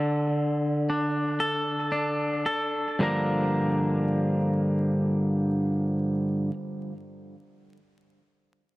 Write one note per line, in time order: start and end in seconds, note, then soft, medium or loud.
0.00 2.46 D3 soft
0.00 0.88 D4 soft
0.00 1.39 A4 soft
0.90 1.91 D4 soft
1.40 2.45 A4 soft
1.92 3.01 D4 soft
2.46 3.01 A4 soft
2.99 6.49 G2 soft
2.99 6.50 D3 soft
2.99 6.51 F3 soft
2.99 6.52 A#3 soft
2.99 6.53 D4 soft
3.03 6.53 A#4 soft